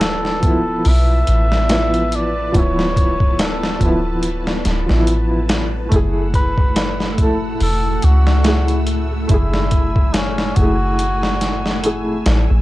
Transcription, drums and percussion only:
0.01 snare, closed hi-hat
0.25 snare
0.43 kick, closed hi-hat
0.85 open hi-hat
1.27 closed hi-hat
1.52 snare
1.69 snare, closed hi-hat
1.94 closed hi-hat
2.12 closed hi-hat
2.54 kick, closed hi-hat
2.79 snare
2.97 kick, closed hi-hat
3.20 kick
3.39 snare, closed hi-hat
3.63 snare
3.81 kick, closed hi-hat
4.23 closed hi-hat
4.47 snare
4.65 snare, closed hi-hat
4.89 snare
5.07 closed hi-hat
5.49 snare, closed hi-hat
5.92 kick, closed hi-hat
6.34 kick, closed hi-hat
6.58 kick
6.76 snare, closed hi-hat
7.00 snare
7.18 kick, closed hi-hat
7.61 open hi-hat
8.02 closed hi-hat
8.27 snare
8.44 snare, closed hi-hat
8.68 closed hi-hat
8.87 closed hi-hat
9.29 kick, closed hi-hat
9.54 snare
9.71 kick, closed hi-hat
9.96 kick
10.14 snare, closed hi-hat
10.38 snare
10.56 kick, closed hi-hat
10.99 closed hi-hat
11.23 snare
11.41 snare, closed hi-hat
11.66 snare
11.84 closed hi-hat
12.26 snare, closed hi-hat

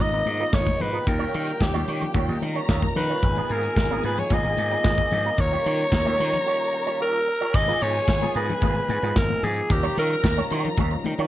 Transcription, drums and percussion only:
0.00 high conga
0.12 closed hi-hat, muted conga
0.26 closed hi-hat, high conga
0.40 closed hi-hat
0.53 kick, snare, muted conga
0.67 kick, high conga
0.80 open hi-hat, low conga
0.93 closed hi-hat
1.07 kick, closed hi-hat, muted conga
1.34 closed hi-hat
1.47 closed hi-hat
1.61 kick, snare
1.76 muted conga, high conga
1.88 closed hi-hat, high conga
2.02 closed hi-hat, low conga
2.14 kick, closed hi-hat, high conga
2.41 closed hi-hat, high conga
2.55 closed hi-hat
2.69 kick, snare, muted conga
2.82 kick, muted conga, high conga
2.96 open hi-hat, low conga
3.09 closed hi-hat
3.23 kick, closed hi-hat
3.36 closed hi-hat, muted conga
3.50 closed hi-hat
3.63 closed hi-hat
3.76 kick, snare
3.91 closed hi-hat, muted conga, high conga
4.03 closed hi-hat, high conga
4.18 closed hi-hat, low conga
4.30 kick, closed hi-hat, muted conga, high conga
4.44 muted conga
4.57 closed hi-hat, high conga
4.71 closed hi-hat
4.84 kick, snare
4.98 kick, closed hi-hat, muted conga, high conga
5.11 open hi-hat, low conga
5.24 closed hi-hat
5.38 kick, closed hi-hat
5.52 muted conga
5.65 closed hi-hat
5.78 closed hi-hat
5.92 kick, snare
6.06 closed hi-hat, high conga
6.19 open hi-hat, high conga
6.33 closed hi-hat, low conga
7.54 kick, crash, muted conga
7.67 closed hi-hat, muted conga
7.81 closed hi-hat
7.94 closed hi-hat
8.08 kick, snare, muted conga
8.22 closed hi-hat, high conga
8.35 closed hi-hat
8.49 closed hi-hat, low conga
8.62 kick, closed hi-hat, muted conga, high conga
8.75 closed hi-hat
8.89 closed hi-hat, high conga
9.02 closed hi-hat
9.16 kick, snare, muted conga
9.30 high conga
9.43 open hi-hat, low conga
9.56 closed hi-hat
9.70 kick, closed hi-hat, muted conga
9.83 closed hi-hat, muted conga
9.97 snare, closed hi-hat
10.10 closed hi-hat
10.24 kick, snare, muted conga
10.38 closed hi-hat, high conga
10.51 closed hi-hat
10.65 closed hi-hat, low conga
10.77 kick, closed hi-hat, muted conga, high conga
10.90 closed hi-hat, muted conga
11.04 closed hi-hat, high conga
11.18 closed hi-hat

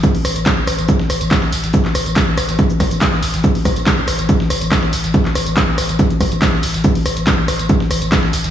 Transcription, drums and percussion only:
0.03 kick, closed hi-hat, tambourine, shaker
0.15 open hi-hat
0.25 cross-stick, open hi-hat, tambourine, shaker
0.36 closed hi-hat, tambourine
0.46 kick, snare, clap, closed hi-hat, shaker
0.67 cross-stick, open hi-hat, tambourine, shaker
0.78 closed hi-hat, tambourine
0.89 kick, closed hi-hat, tambourine, shaker
1.00 snare
1.10 cross-stick, open hi-hat, tambourine, shaker
1.21 closed hi-hat, tambourine
1.31 kick, snare, clap, closed hi-hat, tambourine, shaker
1.42 snare
1.52 open hi-hat, tambourine, shaker
1.63 snare, closed hi-hat, tambourine
1.73 kick, closed hi-hat, tambourine, shaker
1.85 snare, clap
1.95 cross-stick, open hi-hat, tambourine, shaker
2.06 closed hi-hat, tambourine
2.16 kick, snare, clap, closed hi-hat, tambourine, shaker
2.37 cross-stick, open hi-hat, tambourine, shaker
2.49 snare, closed hi-hat, tambourine
2.59 kick, closed hi-hat, tambourine, shaker
2.70 shaker
2.80 kick, cross-stick, snare, open hi-hat, tambourine
2.91 closed hi-hat, tambourine, shaker
3.01 kick, snare, clap, closed hi-hat, shaker
3.12 snare
3.22 open hi-hat, tambourine
3.34 snare, closed hi-hat, tambourine
3.44 kick, closed hi-hat, tambourine, shaker
3.55 open hi-hat
3.65 kick, cross-stick, open hi-hat, tambourine, shaker
3.76 closed hi-hat, tambourine
3.86 kick, snare, clap, closed hi-hat, tambourine, shaker
4.08 cross-stick, open hi-hat, tambourine, shaker
4.19 closed hi-hat, tambourine
4.29 kick, closed hi-hat, tambourine, shaker
4.40 snare
4.50 cross-stick, open hi-hat, tambourine, shaker
4.61 closed hi-hat, tambourine
4.72 kick, cross-stick, snare, clap, closed hi-hat, shaker
4.83 snare
4.93 open hi-hat, tambourine, shaker
5.04 snare, closed hi-hat, tambourine
5.14 kick, closed hi-hat, tambourine, shaker
5.25 snare, clap
5.35 cross-stick, open hi-hat, tambourine, shaker
5.46 closed hi-hat, tambourine
5.57 kick, snare, clap, closed hi-hat, shaker
5.78 cross-stick, open hi-hat, tambourine, shaker
5.89 closed hi-hat, tambourine
5.99 kick, closed hi-hat, tambourine, shaker
6.10 closed hi-hat
6.20 kick, cross-stick, open hi-hat, tambourine, shaker
6.32 closed hi-hat, tambourine
6.42 kick, snare, clap, closed hi-hat, tambourine, shaker
6.53 snare
6.63 open hi-hat, tambourine
6.74 snare, closed hi-hat, tambourine
6.84 kick, closed hi-hat, shaker
6.95 open hi-hat
7.06 cross-stick, open hi-hat, tambourine, shaker
7.17 closed hi-hat, tambourine
7.27 kick, snare, clap, closed hi-hat, tambourine, shaker
7.48 cross-stick, open hi-hat, tambourine, shaker
7.59 closed hi-hat, tambourine
7.69 kick, closed hi-hat, tambourine, shaker
7.80 snare
7.91 cross-stick, open hi-hat, tambourine, shaker
8.02 closed hi-hat, tambourine
8.12 kick, snare, clap, closed hi-hat, shaker
8.23 snare
8.33 open hi-hat, tambourine, shaker
8.44 snare, closed hi-hat, tambourine

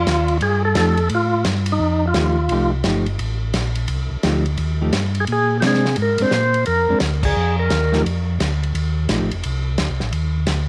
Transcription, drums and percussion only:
0.07 snare, hi-hat pedal, ride
0.28 ride
0.41 ride
0.75 snare, hi-hat pedal, ride
0.97 ride
1.10 ride
1.45 snare, hi-hat pedal, ride
1.66 ride
2.14 snare, hi-hat pedal, ride
2.49 ride
2.84 snare, hi-hat pedal, ride
3.06 ride
3.19 ride
3.54 snare, hi-hat pedal, ride
3.75 ride
3.88 ride
4.23 snare, hi-hat pedal, ride
4.46 ride
4.57 ride
4.93 snare, hi-hat pedal, ride
5.15 ride
5.27 ride
5.62 snare, hi-hat pedal, ride
5.74 snare
5.85 snare
5.96 ride
6.18 ride
6.31 snare, hi-hat pedal
6.54 ride
6.66 ride
7.00 snare, hi-hat pedal, ride
7.23 kick, crash
7.70 snare, hi-hat pedal, ride
7.93 snare
8.06 ride
8.40 snare, hi-hat pedal, ride
8.63 ride
8.75 ride
9.09 snare, hi-hat pedal, ride
9.31 ride
9.43 ride
9.78 snare, hi-hat pedal, ride
10.00 snare
10.13 ride
10.47 snare, hi-hat pedal, ride

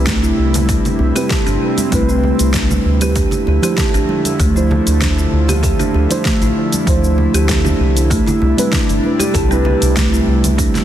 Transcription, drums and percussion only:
0.07 kick, snare, open hi-hat, shaker
0.24 shaker
0.54 open hi-hat, high conga, low conga, shaker
0.69 kick, open hi-hat, shaker
0.85 open hi-hat, low conga, shaker
0.99 high bongo
1.16 open hi-hat, high conga, shaker
1.30 kick, snare, open hi-hat, shaker
1.47 open hi-hat, shaker
1.78 open hi-hat, high conga, shaker
1.92 kick, open hi-hat, shaker
2.09 shaker
2.24 low conga
2.39 open hi-hat, shaker
2.54 kick, snare, open hi-hat, shaker
2.70 high bongo, high conga, low conga, shaker
3.01 open hi-hat, shaker
3.16 kick, open hi-hat, shaker
3.31 open hi-hat, low conga, shaker
3.47 high bongo
3.63 open hi-hat, high conga, shaker
3.78 kick, snare, open hi-hat, shaker
3.94 open hi-hat, high bongo, shaker
4.09 high conga
4.25 open hi-hat, high conga, shaker
4.40 kick, open hi-hat, shaker
4.57 shaker
4.71 high bongo, low conga
4.87 open hi-hat, shaker
5.01 kick, snare, open hi-hat, shaker
5.19 shaker
5.49 open hi-hat, high conga, low conga, shaker
5.63 kick, open hi-hat, shaker
5.80 open hi-hat, low conga, shaker
5.94 high bongo
6.11 open hi-hat, high conga, shaker
6.25 kick, snare, open hi-hat, shaker
6.42 open hi-hat, shaker
6.72 open hi-hat, high conga, shaker
6.87 kick, open hi-hat, shaker
7.04 shaker
7.18 low conga
7.34 open hi-hat, shaker
7.49 kick, snare, open hi-hat, shaker
7.64 high bongo, high conga, low conga, shaker
7.97 open hi-hat, shaker
8.11 kick, open hi-hat, shaker
8.27 open hi-hat, low conga, shaker
8.42 high bongo
8.58 open hi-hat, high conga, shaker
8.73 kick, snare, open hi-hat, shaker
8.89 open hi-hat, high bongo, shaker
9.04 high conga
9.20 open hi-hat, high conga, shaker
9.35 kick, open hi-hat, shaker
9.52 shaker
9.65 high bongo, low conga
9.82 open hi-hat, shaker
9.96 kick, snare, open hi-hat, shaker
10.14 shaker
10.44 open hi-hat, high conga, low conga, shaker
10.58 kick, open hi-hat, shaker
10.75 snare, open hi-hat, low conga, shaker

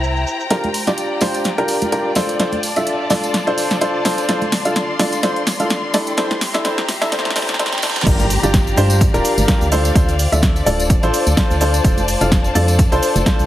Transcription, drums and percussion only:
0.04 cabasa
0.17 cabasa
0.27 cabasa
0.40 cabasa
0.50 snare, closed hi-hat, tambourine
0.64 closed hi-hat, high conga
0.74 open hi-hat, tambourine
0.87 snare, closed hi-hat, tambourine
0.98 closed hi-hat, tambourine
1.21 snare, open hi-hat, tambourine, high conga
1.34 closed hi-hat, tambourine
1.44 snare, closed hi-hat, tambourine
1.58 closed hi-hat
1.68 open hi-hat, tambourine
1.82 closed hi-hat, tambourine, high conga
1.92 closed hi-hat, tambourine
2.15 snare, open hi-hat, tambourine, high conga
2.29 closed hi-hat, tambourine
2.40 snare, closed hi-hat, tambourine
2.52 closed hi-hat, high conga
2.63 open hi-hat, tambourine
2.76 closed hi-hat, tambourine
2.87 closed hi-hat, tambourine
3.10 snare, open hi-hat, tambourine, high conga
3.24 closed hi-hat, tambourine
3.34 snare, closed hi-hat, tambourine
3.47 closed hi-hat
3.58 open hi-hat, tambourine
3.71 snare, closed hi-hat, tambourine
3.81 closed hi-hat, tambourine
4.05 snare, open hi-hat, tambourine
4.18 closed hi-hat, tambourine
4.29 snare, closed hi-hat, tambourine
4.41 closed hi-hat, high conga
4.52 snare, open hi-hat, tambourine
4.65 closed hi-hat, tambourine
4.76 snare, closed hi-hat, tambourine
4.99 snare, open hi-hat, tambourine, high conga
5.12 closed hi-hat, tambourine
5.23 snare, closed hi-hat, tambourine
5.36 closed hi-hat
5.47 snare, open hi-hat, tambourine
5.60 closed hi-hat, tambourine, high conga
5.70 snare, closed hi-hat, tambourine
5.94 snare, open hi-hat, tambourine, high conga
6.07 closed hi-hat, tambourine
6.17 snare, closed hi-hat, tambourine
6.31 snare, closed hi-hat, high conga
6.41 snare, open hi-hat, tambourine
6.54 snare, closed hi-hat, tambourine
6.65 snare, closed hi-hat, tambourine
6.78 snare
6.89 snare, open hi-hat, tambourine, high conga
7.02 snare, closed hi-hat, tambourine
7.12 snare, closed hi-hat, tambourine
7.19 snare
7.25 snare, closed hi-hat
7.30 snare
7.36 snare, open hi-hat, tambourine
7.42 snare
7.47 snare, closed hi-hat, tambourine
7.54 snare
7.59 snare, closed hi-hat, tambourine
7.66 snare
7.72 snare, closed hi-hat
7.78 snare
7.82 snare, open hi-hat, tambourine
7.90 snare
7.96 snare, closed hi-hat, tambourine
8.01 snare
8.06 kick, closed hi-hat, crash, tambourine, cabasa
8.20 closed hi-hat, tambourine, high conga, cabasa
8.30 open hi-hat, cabasa
8.43 closed hi-hat, tambourine, cabasa
8.54 kick, snare, closed hi-hat, tambourine, cabasa
8.67 tambourine, cabasa
8.76 open hi-hat, high conga, cabasa
8.90 closed hi-hat, tambourine, cabasa
9.01 kick, closed hi-hat, tambourine, cabasa
9.14 closed hi-hat, tambourine, cabasa
9.25 open hi-hat, cabasa
9.38 closed hi-hat, tambourine, high conga, cabasa
9.48 kick, snare, closed hi-hat, tambourine, cabasa
9.61 tambourine, cabasa
9.72 open hi-hat, high conga, cabasa
9.85 closed hi-hat, tambourine, cabasa
9.95 kick, closed hi-hat, tambourine, cabasa
10.08 closed hi-hat, tambourine, cabasa
10.19 open hi-hat, cabasa
10.33 closed hi-hat, tambourine, cabasa
10.42 kick, snare, closed hi-hat, tambourine, cabasa
10.56 tambourine, cabasa
10.67 open hi-hat, high conga, cabasa
10.80 closed hi-hat, tambourine, cabasa
10.90 kick, closed hi-hat, tambourine, cabasa
11.03 closed hi-hat, tambourine, cabasa
11.14 open hi-hat, cabasa
11.27 closed hi-hat, tambourine, cabasa
11.37 kick, snare, closed hi-hat, tambourine, cabasa
11.51 tambourine, cabasa
11.61 open hi-hat, cabasa
11.74 closed hi-hat, tambourine, cabasa
11.84 kick, closed hi-hat, tambourine, cabasa
11.97 closed hi-hat, tambourine, high conga, cabasa
12.08 open hi-hat, cabasa
12.21 closed hi-hat, tambourine, cabasa
12.32 kick, snare, closed hi-hat, tambourine, cabasa
12.44 tambourine, cabasa
12.55 open hi-hat, high conga, cabasa
12.68 closed hi-hat, tambourine, cabasa
12.79 kick, closed hi-hat, tambourine, cabasa
12.92 closed hi-hat, tambourine, cabasa
13.03 open hi-hat, cabasa
13.16 closed hi-hat, tambourine, high conga, cabasa
13.26 kick, snare, closed hi-hat, tambourine, cabasa
13.39 tambourine, cabasa

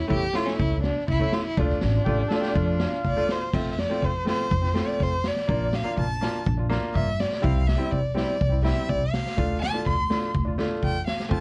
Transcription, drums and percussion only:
0.10 kick
0.35 snare
0.47 snare
0.59 kick
0.83 snare
0.96 snare
1.08 kick
1.32 snare
1.57 kick
1.69 snare
1.81 snare
2.06 kick
2.30 snare
2.43 snare
2.55 kick
2.80 snare
2.93 snare
3.04 kick, snare
3.29 snare
3.54 kick, crash
3.78 snare
4.02 kick
4.27 snare
4.51 kick
4.64 snare
4.75 snare
5.00 kick
5.24 snare
5.36 snare
5.49 kick
5.73 snare
5.97 kick
6.22 snare
6.46 kick
6.71 snare
6.95 kick
7.20 snare
7.32 snare
7.44 kick
7.69 snare
7.92 kick
8.17 snare
8.41 kick
8.65 snare
8.89 kick
9.14 snare
9.26 snare
9.38 kick
9.63 snare
9.86 kick, snare
10.11 snare
10.35 kick
10.59 snare
10.83 kick
11.07 snare
11.20 snare
11.31 kick

